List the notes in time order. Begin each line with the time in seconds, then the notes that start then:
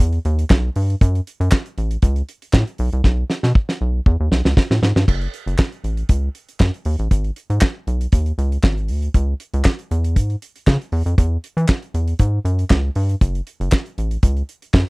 0.00 E2
0.13 closed hi-hat
0.25 D#2, closed hi-hat
0.39 closed hi-hat
0.50 B1, kick, snare, clap
0.76 G2, open hi-hat
0.90 closed hi-hat
1.01 F#2, kick, closed hi-hat
1.15 closed hi-hat
1.27 closed hi-hat
1.40 F#2, closed hi-hat
1.51 kick, snare, clap
1.66 closed hi-hat
1.78 A1, closed hi-hat
1.91 closed hi-hat
2.02 C#2, kick, closed hi-hat
2.16 closed hi-hat
2.29 closed hi-hat
2.42 closed hi-hat
2.53 A2, kick, snare, clap
2.67 closed hi-hat
2.78 B1, open hi-hat
2.93 C2, closed hi-hat
3.04 B1, kick, snare
3.30 snare
3.43 B2, snare
3.55 kick
3.69 snare
3.81 B1
4.06 E2, kick
4.20 D#2
4.31 B1, snare
4.45 C#2, snare
4.57 kick, snare
4.70 A2, snare
4.82 G#2, snare
4.96 G2, snare
5.08 F#1, kick, crash
5.21 closed hi-hat
5.34 closed hi-hat
5.46 F#1, closed hi-hat
5.58 kick, snare, clap
5.72 closed hi-hat
5.84 A1, closed hi-hat
5.97 closed hi-hat
6.09 C#2, kick, closed hi-hat
6.35 closed hi-hat
6.49 closed hi-hat
6.60 F#2, kick, snare, clap
6.74 closed hi-hat
6.85 D#2, open hi-hat
6.99 A1, closed hi-hat
7.11 G#1, kick, closed hi-hat
7.24 closed hi-hat
7.36 closed hi-hat
7.50 G#2, closed hi-hat
7.61 kick, snare, clap
7.87 B1, closed hi-hat
8.01 closed hi-hat
8.12 D#2, kick, closed hi-hat
8.26 closed hi-hat
8.38 C#2, closed hi-hat
8.52 closed hi-hat
8.63 G#1, kick, snare, clap
8.78 closed hi-hat
8.88 D2, open hi-hat
9.02 closed hi-hat
9.14 C#2, kick, closed hi-hat
9.40 closed hi-hat
9.54 C#2, closed hi-hat
9.64 kick, snare, clap
9.79 closed hi-hat
9.91 E2, closed hi-hat
10.04 closed hi-hat
10.16 G#2, kick, closed hi-hat
10.30 closed hi-hat
10.42 closed hi-hat
10.56 closed hi-hat
10.67 C#3, kick, snare, clap
10.82 closed hi-hat
10.92 E2, open hi-hat
11.06 F2, closed hi-hat
11.18 E2, kick, closed hi-hat
11.44 closed hi-hat
11.57 E3, closed hi-hat
11.68 kick, snare, clap
11.82 closed hi-hat
11.94 E2, closed hi-hat
12.08 closed hi-hat
12.19 G#2, kick, closed hi-hat
12.45 F#2, closed hi-hat
12.59 closed hi-hat
12.70 C#2, kick, snare, clap
12.95 G2, open hi-hat
13.09 closed hi-hat
13.21 F#1, kick, closed hi-hat
13.35 closed hi-hat
13.47 closed hi-hat
13.60 F#1, closed hi-hat
13.72 kick, snare, clap
13.86 closed hi-hat
13.98 A1, closed hi-hat
14.11 closed hi-hat
14.23 C#2, kick, closed hi-hat
14.37 closed hi-hat
14.49 closed hi-hat
14.62 closed hi-hat
14.74 F#2, kick, snare, clap